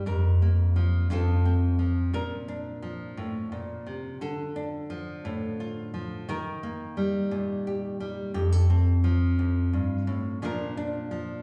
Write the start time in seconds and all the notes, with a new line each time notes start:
0.06 F2 A#4
0.42 A#3
0.76 F3
1.10 F2 F3 C4 F4 A4
1.45 C4
1.79 F3
2.13 A#2 A#4
2.48 D4
2.82 F3
3.17 A2
3.52 A#2
3.87 C3
4.21 D3 A4
4.56 D4
4.90 F3
5.25 A2
5.60 F4
5.94 F3
6.29 D#3 A#4
6.63 A#3
6.97 G3
7.31 A#2
7.67 G4
8.00 G3
8.34 F2 G4
8.52 A4
8.70 C4
9.04 F3
9.39 F2
9.73 G2
10.07 A2
10.42 A#2 F3 D4 F4 A#4
10.77 D4
11.11 F3